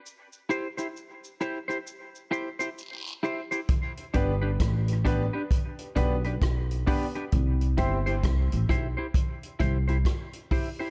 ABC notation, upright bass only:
X:1
M:4/4
L:1/16
Q:"Swing 16ths" 1/4=66
K:Clyd
V:1 name="Upright bass" clef=bass
z16 | z2 G,,,2 A,,,3 z3 B,,,2 B,,,2 z2 | C,,2 G,,,2 C,, A,,, B,,, z3 C,,2 z4 |]